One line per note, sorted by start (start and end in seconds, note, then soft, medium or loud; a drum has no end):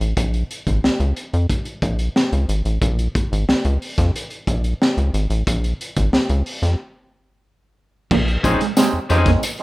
0.01 0.14 A1 medium
0.01 closed hi-hat soft
0.17 0.44 A#1 loud
0.17 kick loud
0.17 closed hi-hat medium
0.34 closed hi-hat soft
0.51 closed hi-hat medium
0.67 0.80 G#1 medium
0.67 kick medium
0.67 closed hi-hat medium
0.84 0.91 C#2 soft
0.84 snare medium
1.00 1.13 C#2 medium
1.00 closed hi-hat soft
1.16 closed hi-hat medium
1.33 1.47 F2 medium
1.33 closed hi-hat soft
1.50 kick medium
1.50 closed hi-hat medium
1.65 closed hi-hat soft
1.82 2.09 A#1 medium
1.82 kick medium
1.82 closed hi-hat medium
1.99 closed hi-hat medium
2.16 snare loud
2.32 2.46 C#2 medium
2.32 closed hi-hat soft
2.49 2.62 G#1 medium
2.49 closed hi-hat medium
2.65 2.79 A1 medium
2.65 closed hi-hat medium
2.81 3.08 A#1 loud
2.81 kick loud
2.81 closed hi-hat medium
2.99 closed hi-hat soft
3.15 kick loud
3.15 closed hi-hat medium
3.32 3.45 G#1 medium
3.32 closed hi-hat medium
3.48 3.55 C#2 soft
3.48 snare medium
3.65 3.78 C#2 medium
3.65 closed hi-hat soft
3.82 open hi-hat medium
3.98 4.11 F2 loud
3.98 kick medium
3.98 snare soft
3.98 closed hi-hat soft
4.16 closed hi-hat medium
4.30 closed hi-hat soft
4.47 4.74 A#1 medium
4.47 kick medium
4.47 closed hi-hat medium
4.64 closed hi-hat soft
4.82 snare loud
4.97 5.11 C#2 medium
4.97 closed hi-hat soft
5.14 5.27 G#1 medium
5.14 closed hi-hat medium
5.30 5.43 A1 medium
5.30 closed hi-hat medium
5.47 5.74 A#1 medium
5.47 kick loud
5.47 closed hi-hat medium
5.64 closed hi-hat soft
5.81 closed hi-hat medium
5.96 6.10 G#1 medium
5.96 kick medium
5.96 closed hi-hat medium
6.13 6.20 C#2 soft
6.13 snare loud
6.29 6.43 C#2 medium
6.29 closed hi-hat soft
6.46 open hi-hat medium
6.62 6.76 F2 medium
6.62 snare soft
6.62 closed hi-hat soft
8.11 8.38 A#1 loud
8.11 8.21 A#3 medium
8.11 kick loud
8.11 crash loud
8.28 closed hi-hat soft
8.43 8.57 A#1 loud
8.43 8.66 G#3 loud
8.43 8.66 C4 medium
8.43 8.60 C#4 medium
8.43 8.66 C#4 medium
8.43 8.60 D#4 medium
8.43 8.66 D#4 loud
8.43 8.60 G#4 loud
8.43 8.60 C5 medium
8.43 muted clean electric guitar stroke soft
8.43 kick loud
8.43 closed hi-hat medium
8.43 tambourine medium
8.61 8.71 G#3 medium
8.61 closed hi-hat medium
8.77 8.99 G#3 medium
8.77 8.87 G#3 medium
8.77 8.99 C4 medium
8.77 8.99 C#4 medium
8.77 8.99 D#4 medium
8.77 snare loud
8.77 closed hi-hat medium
8.77 tambourine loud
8.93 9.00 F2 medium
9.09 9.37 F2 medium
9.09 9.43 G#3 medium
9.09 9.43 C4 medium
9.09 9.30 C#4 medium
9.09 9.43 C#4 medium
9.09 9.30 D#4 medium
9.09 9.44 D#4 loud
9.09 9.30 G#4 medium
9.09 9.30 C5 medium
9.09 muted clean electric guitar stroke soft
9.09 closed hi-hat medium
9.09 tambourine soft
9.26 9.37 A#3 medium
9.26 kick medium
9.26 snare soft
9.26 closed hi-hat medium
9.43 muted clean electric guitar stroke soft
9.43 closed hi-hat loud
9.43 tambourine medium
9.58 9.63 G#3 medium
9.58 9.63 C4 medium
9.58 closed hi-hat soft